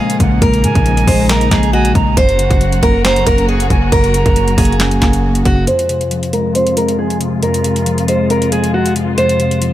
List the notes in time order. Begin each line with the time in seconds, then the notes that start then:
Already playing: A#2 C#3 F3 G#3 A#3 F4 G#4
0.00 F5
0.10 closed hi-hat
0.20 A#1 C#3 F#5, kick, closed hi-hat
0.42 A#1 A#2 D#4 A#4, kick, closed hi-hat
0.54 closed hi-hat
0.63 A#2 C#3 G#5, closed hi-hat
0.75 A#1, kick, closed hi-hat
0.86 F3, closed hi-hat
0.97 closed hi-hat
1.07 A#1 G#3 C5, kick, open hi-hat
1.29 A#3 A#4 A#5, snare, clap, closed hi-hat
1.41 closed hi-hat
1.51 A#1 G#3 G#4, kick, snare, clap, closed hi-hat
1.63 closed hi-hat
1.73 F#4 G#5
1.85 closed hi-hat
1.95 A#1 C#3 A#5, kick, closed hi-hat
2.17 F#1 F#2 F#3 A#3 F#4 C5, kick, closed hi-hat
2.29 closed hi-hat
2.38 C#3 F#5, closed hi-hat
2.51 F#1, kick, closed hi-hat
2.60 F#3, closed hi-hat
2.72 closed hi-hat
2.83 F#1 A#3 A#4, kick, closed hi-hat
3.05 C#4 C5 A#5, snare, clap, closed hi-hat
3.16 closed hi-hat
3.26 F#1 A#3 A#4, kick, closed hi-hat
3.38 closed hi-hat
3.48 G#4 F#5
3.60 closed hi-hat
3.70 F#1 C#3 G#5, kick, closed hi-hat
3.92 F#1 F#2 A#4, kick, closed hi-hat
4.04 closed hi-hat
4.14 C#3 A#5, closed hi-hat
4.26 F#1, kick, closed hi-hat
4.36 F#3, closed hi-hat
4.48 closed hi-hat
4.58 F#1 A#3 G#4, kick, closed hi-hat, open hi-hat
4.65 closed hi-hat
4.72 closed hi-hat
4.79 C#4, snare, clap, closed hi-hat
4.91 closed hi-hat
5.01 F#1 A#3, kick, snare, clap, closed hi-hat
5.13 closed hi-hat
5.35 closed hi-hat
5.45 F#1 C#3 F#4, kick, closed hi-hat
5.67 F2 C3 F3 G#3 F4 C5, closed hi-hat
5.79 closed hi-hat
5.89 C3, closed hi-hat
6.01 closed hi-hat
6.11 F3, closed hi-hat
6.23 closed hi-hat
6.33 G#3 A#4, closed hi-hat
6.55 C4 C5, closed hi-hat
6.67 closed hi-hat
6.77 G#3 A#4, closed hi-hat
6.88 closed hi-hat
6.99 G#4
7.10 closed hi-hat
7.21 C3, closed hi-hat
7.43 F2 A#4, closed hi-hat
7.54 closed hi-hat
7.64 C3, closed hi-hat
7.76 closed hi-hat
7.86 F3, closed hi-hat
7.98 closed hi-hat
8.08 G#3 C5, closed hi-hat
8.30 C4 A#4, closed hi-hat
8.42 closed hi-hat
8.52 G#3 G#4, closed hi-hat
8.64 closed hi-hat
8.74 F#4
8.86 closed hi-hat
8.96 C3, closed hi-hat
9.18 F2 C5, closed hi-hat
9.29 closed hi-hat
9.39 C3, closed hi-hat
9.51 closed hi-hat
9.62 F3, closed hi-hat